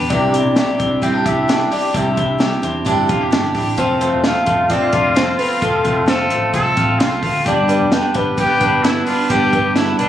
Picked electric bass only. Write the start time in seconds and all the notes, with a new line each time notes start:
0.11 C2
0.45 B1
0.80 C2
1.26 C2
1.94 C2
2.17 C2
2.64 E2
2.86 G1
3.09 E1
3.32 G1
3.55 A1
3.78 F1
4.13 E1
4.47 F1
4.93 F1
5.62 F1
5.85 F1
6.31 A1
6.54 C2
6.77 A1
7.00 C2
7.23 D2
7.46 G1
7.80 F1
8.15 G1
8.61 G1
9.30 G1
9.53 G1
10.00 B1